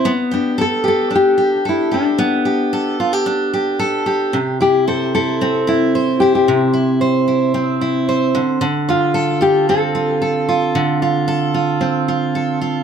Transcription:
<<
  \new Staff \with { instrumentName = "Nylon-string guitar" } { \time 4/4 \key c \major \tempo 4 = 112 r8 d'8 a'8 a'8 g'4 e'8 d'8~ | d'4. r2 r8 | r8 g'8 a'8 a'4 e'4 g'16 g'16~ | g'4.~ g'16 r2 r16 |
r8 f'4 g'8 a'2~ | a'2. r4 | }
  \new Staff \with { instrumentName = "Steel-string acoustic guitar" } { \time 4/4 \key c \major b8 g'8 a'8 g'8 d'8 g'8 a'8 g'8 | b8 g'8 a'8 f'16 g'16 d'8 g'8 a'8 g'8 | c8 e'8 c''8 e'8 c'8 e'8 c''8 e'8 | c8 e'8 c''8 e'8 c'8 e'8 c''8 d8 |
d8 f'8 a'8 f'8 c'8 f'8 a'8 f'8 | d8 f'8 a'8 f'8 c'8 f'8 a'8 f'8 | }
>>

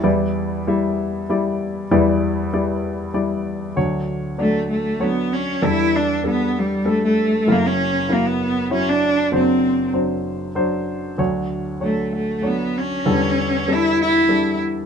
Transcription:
<<
  \new Staff \with { instrumentName = "Grand piano" } { \time 3/4 \key d \major \tempo 4 = 97 <g e' d''>4 <g e' e''>4 <g e' d''>4 | <g e' d''>4 <g e' d''>4 <g e' d''>4 | <fis d' cis''>4 <fis d' d''>4 <fis d' cis''>4 | <g d' a'>4 <g d' a'>4 <g d' a'>4 |
<fis e' ais'>4 <fis e' ais'>4 <fis e' cis''>4 | <fis d' c''>4 <fis d' c''>4 <fis d' c''>4 | <fis d' cis''>4 <fis d' cis''>4 <fis d' cis''>4 | <d g a'>4 <g d' a'>4 <g d' a'>4 | }
  \new Staff \with { instrumentName = "Grand piano" } { \clef bass \time 3/4 \key d \major <e, e>2. | <e, e>2. | <d, d>2. | <e, e>2. |
<fis,, fis,>2. | <fis,, fis,>2. | <d, d>2. | <e, e>2. | }
  \new Staff \with { instrumentName = "Cello" } { \time 3/4 \key d \major r2. | r2. | r4 a8 a8 b8 cis'8 | e'8 d'8 b8 g8 a16 a8. |
ais16 cis'8. ais16 b8. cis'16 d'8. | c'4 r2 | r4 a8 a8 b8 cis'8~ | cis'4 e'8 e'4 r8 | }
>>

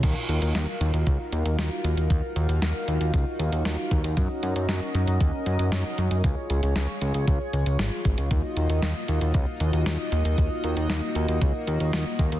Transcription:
<<
  \new Staff \with { instrumentName = "Analog synth pad" } { \time 4/4 \key ees \minor \tempo 4 = 116 << { <ees' f' bes' f''>1~ | <ees' f' bes' f''>1 | <des' bes' ees''>1 | <aes' des''>1 |
<bes ees' ges' ees''>1~ | <bes ees' ges' ees''>1 | } \\ { ges'1~ | ges'1~ | ges'1 | f'1~ |
f'1~ | f'1 | } >> }
  \new Staff \with { instrumentName = "Analog synth bass" } { \clef bass \time 4/4 \key ees \minor ees,16 r16 ees,16 ees,16 ees,16 r16 ees,16 ees,16 des,16 r16 ees,16 ees,16 ees,16 r16 ees,16 ees,16 | ees,16 r16 ees,16 ees,16 ees,16 r16 ees,16 ees,16 des,16 r16 ees,16 ees,16 ees,16 r16 ees,16 ees,16 | ges,16 r16 ges,16 ges,16 ges,16 r16 ges,16 ges,16 ees,16 r16 ges,16 ges,16 ges,16 r16 ges,16 ges,16 | des,16 r16 des,16 des,16 des,16 r16 des,16 des,16 des,16 r16 des,16 des,16 aes,,16 r16 aes,,16 des,16 |
ees,16 r16 ees,16 ees,16 ees,16 r16 ees,16 ees,16 des,16 r16 ees,16 ees,16 ees,16 r16 ees,16 ees,16 | ees,16 r16 ees,16 ees,16 ees,16 r16 ees,16 ees,16 des,16 r16 ees,16 ees,16 ees,16 r16 ees,16 ees,16 | }
  \new DrumStaff \with { instrumentName = "Drums" } \drummode { \time 4/4 <cymc hh bd>8 hh16 hh16 <hh sn>8 hh16 hh16 <hh bd>8 hh16 hh16 <hh sn>8 hh16 hh16 | <hh bd>8 hh16 hh16 <hh sn>8 hh16 hh16 <hh bd>8 hh16 hh16 <hh sn>8 <hh bd>16 hh16 | <hh bd>8 hh16 hh16 <hh sn>8 hh16 hh16 <hh bd>8 hh16 hh16 <hh sn>8 hh16 hh16 | <hh bd>8 hh16 hh16 <hh sn>8 hh16 hh16 <hh bd>8 hh16 hh16 <hh sn>8 <hh bd>16 hh16 |
<hh bd>8 hh16 hh16 <hh sn>8 hh16 hh16 <hh bd>8 hh16 hh16 <hh sn>8 hh16 hh16 | <hh bd>8 hh16 hh16 <hh sn>8 hh16 hh16 <hh bd>8 hh16 hh16 <hh sn>8 <hh bd>16 hh16 | }
>>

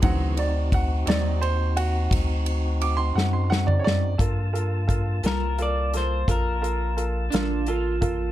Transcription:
<<
  \new Staff \with { instrumentName = "Clean electric guitar" } { \time 12/8 \key g \minor \tempo 4. = 58 r1. | r4. bes'8 d''8 c''8 bes'4 r2 | }
  \new Staff \with { instrumentName = "Upright piano" } { \time 12/8 \key g \minor <fis c' ees' fis''>8 d''8 fis''8 <fis c' ees' d''>8 c''8 fis'8 r4 d'''16 c'''16 fis''16 c'''16 fis''16 d''16 <cis'' d''>8 | <f' a' bes'>8 <f' a' bes'>8 <f' a' bes'>8 <f' a' bes'>8 <f' a' bes'>8 <f' a' bes'>8 <f' a' bes'>8 <f' a' bes'>8 <f' a' bes'>8 <f' a' bes'>8 <f' a' bes'>8 <f' a' bes'>8 | }
  \new Staff \with { instrumentName = "Electric slide guitar" } { \time 12/8 \key g \minor r1. | r1 r8 d'8 f'4 | }
  \new Staff \with { instrumentName = "Tonewheel organ" } { \time 12/8 \key g \minor <cis e fis'>8 <c' ees' fis'>1~ <c' ees' fis'>4. | <bes f' a''>1. | }
  \new Staff \with { instrumentName = "Sub bass" } { \clef bass \time 12/8 \key g \minor d,4. ees,4. d,4. fis,4. | g,4. c,4. bes,,4. a,,4. | }
  \new DrumStaff \with { instrumentName = "Drums" } \drummode { \time 12/8 <bd cymr>8 cymr8 <bd cymr>8 <cymr sn>8 cymr8 cymr8 <bd cymr sn>8 cymr8 cymr8 sn8 sn16 toml16 sn8 | <hh bd>8 hh8 <hh bd>8 <hh sn>8 hh8 <hh sn>8 <hh bd>8 hh8 hh8 <hh sn>8 hh8 <hh bd>8 | }
>>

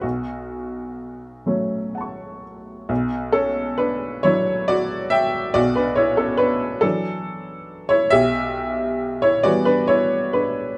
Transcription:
<<
  \new Staff \with { instrumentName = "Upright piano" } { \time 6/8 \key b \minor \tempo 4. = 45 << { r2 <fis'' a'' cis'''>4 | r8 cis'8 d'8 e'8 fis'8 g''8 | fis'16 d'16 e'16 cis'16 d'8 d'4~ d'16 e'16 | g'4~ g'16 e'16 fis'16 d'16 e'8 d'8 | } \\ { fis'2~ fis'8 r8 | r8 a'8 b'8 cis''8 d''8 e''8 | d''16 b'16 cis''16 a'16 b'8 a'4~ a'16 cis''16 | e''4~ e''16 cis''16 d''16 b'16 cis''8 b'8 | } >> }
  \new Staff \with { instrumentName = "Upright piano" } { \clef bass \time 6/8 \key b \minor b,,4. <fis a cis'>4. | b,,4. <fis d'>4. | b,,4. <e fis>4. | b,,4. <e g b>4. | }
>>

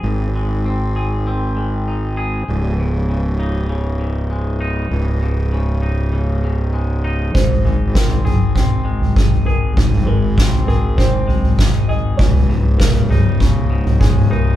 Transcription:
<<
  \new Staff \with { instrumentName = "Felt piano" } { \time 4/4 \key aes \mixolydian \tempo 4 = 99 r1 | r1 | r1 | c''4 bes'8 aes'4 r8 aes'8 bes'8~ |
bes'8 bes'4 bes'8 c''4 r8 ees''8 | des''4 bes'8 aes'4 r8 aes'8 bes'8 | }
  \new Staff \with { instrumentName = "Clean electric guitar" } { \clef bass \time 4/4 \key aes \mixolydian <aes, aes c' ees' aes'>8 aes8 c'8 aes'8 c'8 aes8 ees'8 aes'8 | des,8 aes,8 des8 ees'8 des8 aes,8 aes8 ees'8 | des,8 aes,8 des8 ees'8 des8 aes,8 aes8 ees'8 | aes,8 aes8 c'8 aes'8 c'8 aes8 ees'8 aes'8 |
aes,8 aes8 c'8 aes'8 c'8 aes8 ees'8 aes'8 | des,8 aes,8 des8 ees'8 des8 aes,8 aes8 ees'8 | }
  \new Staff \with { instrumentName = "Fingered electric bass" } { \clef bass \time 4/4 \key aes \mixolydian aes,,1 | des,,1 | des,,1 | aes,,1 |
aes,,1 | des,,1 | }
  \new DrumStaff \with { instrumentName = "Drums" } \drummode { \time 4/4 r4 r4 r4 r4 | r4 r4 r4 r4 | r4 r4 r4 r4 | <bd tomfh>16 tomfh16 tomfh8 <bd sn>16 tomfh16 <tomfh toml>8 <bd tomfh>8. tomfh16 <bd toml>16 tomfh16 tomfh8 |
<bd tomfh>16 <tomfh toml>8. <bd sn>16 tomfh16 tomfh8 <bd tomfh>8 tomfh16 tomfh16 <bd sn toml>8 tomfh8 | <bd tomfh>16 tomfh16 tomfh8 <bd sn>16 tomfh16 <tomfh toml>8 <bd tomfh>8. tomfh16 <bd toml>16 tomfh16 tomfh8 | }
>>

